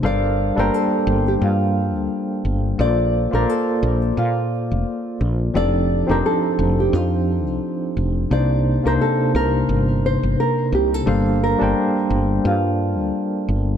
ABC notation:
X:1
M:4/4
L:1/16
Q:"Swing 16ths" 1/4=87
K:Gm
V:1 name="Nylon-string guitar"
d3 B A3 G F6 z2 | d3 B A4 F6 z2 | d3 B A3 G F6 z2 | d3 B A2 B4 c2 B2 G A- |
A2 B6 F6 z2 |]
V:2 name="Tine electric piano"
[G,DABcf]3 [G,B,DAcg]12- [G,B,DAcg] | [B,FAcd]3 [B,FAcd]12- [B,FAcd] | [F,CDEGA]3 [F,CDEGc]12- [F,CDEGc] | [C,B,DEc]3 [C,B,DEc]12- [C,B,DEc] |
[G,B,DAcf]3 [G,DBcga]12- [G,DBcga] |]
V:3 name="Fretless electric bass" clef=bass
G,,,3 G,,, z2 G,,,2 G,,3 D,, z2 G,,,2 | B,,,3 B,,, z2 B,,,2 B,,3 F,,, z2 B,,,2 | F,,,3 F,,, z2 F,,,2 F,,3 C,, z2 F,,,2 | C,,3 C,, z2 C,,2 G,,,3 G,,, z2 C,,2 |
G,,,3 G,,, z2 G,,,2 G,,3 D,, z2 G,,,2 |]